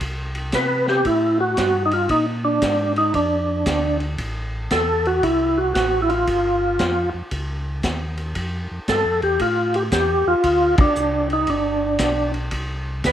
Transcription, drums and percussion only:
0.01 kick soft
0.01 ride medium
0.35 ride soft
0.52 kick soft
0.52 snare medium
0.52 hi-hat pedal medium
0.52 ride medium
0.87 snare soft
1.05 kick soft
1.05 ride medium
1.57 kick soft
1.57 snare medium
1.57 hi-hat pedal medium
1.57 ride medium
1.91 ride soft
2.09 kick soft
2.09 ride medium
2.62 kick soft
2.62 snare medium
2.62 hi-hat pedal medium
2.62 ride medium
2.96 ride soft
3.14 kick soft
3.14 ride medium
3.66 kick soft
3.66 snare medium
3.66 hi-hat pedal medium
3.66 ride medium
4.00 ride soft
4.18 kick soft
4.18 ride medium
4.71 kick soft
4.71 snare medium
4.71 hi-hat pedal medium
4.71 ride medium
5.05 ride soft
5.23 kick soft
5.23 ride medium
5.75 kick soft
5.75 snare medium
5.75 hi-hat pedal soft
5.75 ride medium
6.10 ride soft
6.27 kick soft
6.27 ride medium
6.79 kick soft
6.79 snare medium
6.79 hi-hat pedal soft
6.79 ride medium
7.31 kick soft
7.31 ride medium
7.83 kick soft
7.83 snare medium
7.83 hi-hat pedal soft
7.83 ride medium
8.17 ride soft
8.35 kick soft
8.35 ride medium
8.88 kick soft
8.88 snare medium
8.88 hi-hat pedal medium
8.88 ride medium
9.22 ride soft
9.39 kick soft
9.39 ride medium
9.74 ride soft
9.92 kick soft
9.92 snare medium
9.92 hi-hat pedal medium
9.92 ride medium
10.44 kick soft
10.44 ride medium
10.78 kick medium
10.78 ride medium
10.95 hi-hat pedal medium
11.30 ride soft
11.47 kick soft
11.47 ride medium
11.99 kick soft
11.99 snare medium
11.99 hi-hat pedal medium
11.99 ride medium
12.34 ride soft
12.51 kick soft
12.51 ride medium
13.04 kick soft
13.04 snare medium
13.04 hi-hat pedal medium
13.04 ride medium

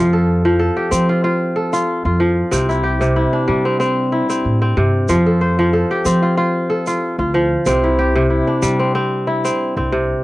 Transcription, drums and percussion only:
0.92 shaker medium
1.73 shaker medium
2.52 shaker medium
2.70 shaker soft
3.01 shaker soft
3.80 shaker soft
4.30 shaker soft
5.09 shaker medium
6.05 shaker medium
6.87 shaker soft
7.66 shaker medium
8.63 shaker medium
9.45 shaker medium

